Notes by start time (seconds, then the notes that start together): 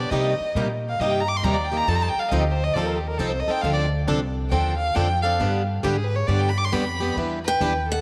Already playing: B2 B3 D4 G4 D5
0.10 C3 G3 A#3 D#4 G4 D#5
0.40 muted upright bass stroke
0.55 A#2 C3 G3 A#3 D#4 G4
0.89 F5
1.00 G2 C3 G3 A#3 D#4 G4 D#5
1.11 G5
1.21 A#5
1.28 D6
1.37 C6
1.43 D#2 C3 G3 A#3 D#4 G4 A#5
1.54 D5
1.65 G5
1.72 A#3 D#4 G4
1.77 A#5
1.87 F2 F3 C4 D#4 A4 A5
1.96 A#5
2.02 A5
2.09 G5
2.15 muted upright bass stroke
2.19 F5
2.29 D2 F3 C4 D#4 A4 D#5
2.41 G4
2.52 C5
2.64 D#5
2.74 D#2 F3 C4 D#4 A4 D5
2.86 A#4
2.97 G4
3.07 A#4
3.18 C2 F3 C4 D#4 A4
3.29 C5
3.40 D#5
3.47 C4 D#4 A4 G5, muted upright bass stroke
3.62 D2 D3 F3 C4 D4 A4 F5
3.73 D5
4.07 C2 D3 F3 C4 D4 A4
4.50 D#2 D3 F3 C4 D4 A4 G5
4.77 F5
4.95 F2 D3 F3 C4 D4 A4 G5
5.22 C4 D4 A4 F5
5.40 G2 D3 G3 B3 D4 G4
5.83 G#2 D3 G3 B3 D4 G4
5.95 G#4
6.04 B4
6.16 C#5
6.27 G2 D3 G3 B3 D4 G4 D5
6.40 G5
6.49 B5
6.58 D6
6.65 C6
6.72 F2 D3 G3 B3 D4 G4 B5
7.00 B3 D4 G4
7.16 E2 E3 G3 B3 D4 E4 G4 B4
7.45 B4 G5
7.61 D#2 E3 G3 B3 D4 E4 G4 B4
7.89 A4 F#5